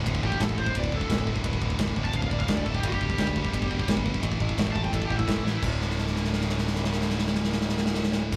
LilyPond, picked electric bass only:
\new Staff \with { instrumentName = "Picked electric bass" } { \clef bass \time 4/4 \key a \phrygian \tempo 4 = 172 d,,8 a,,8 a,,4 d,,4 d,,4 | d,,8 d,,8 d,,8 d,,8 d,,8 d,,8 d,8 d,,8 | g,,8 d,,8 d,4 g,,4 g,,4 | a,,8 a,,8 a,,8 a,,8 a,,8 a,,8 a,8 a,,8 |
d,,1~ | d,,1 | }